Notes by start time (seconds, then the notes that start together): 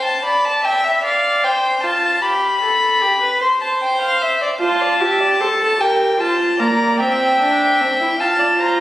Already playing: C5
0.05 A5
0.25 D5 B5
0.44 A5
0.64 E5 G5
0.84 E5
1.04 D5 F5
1.43 C5 G5
1.83 F4 A5
2.23 G4 B5
2.62 A4
3.02 G4
3.21 B4
3.41 C5 C6
3.61 A5
3.82 G5
4.02 F5
4.22 E5
4.42 D5
4.61 F4 C5 A5
4.81 D5
5.01 G4 E5
5.20 D5
5.40 A4 C5
5.59 A4
5.79 G4 A#4 G5
6.19 F4 C5 A5
6.59 A#3 D5 A#5
7.00 C4 E5 G5
7.40 D4
7.80 C4
8.00 E4
8.19 F4 F5 A5
8.39 D5
8.59 C5 A#5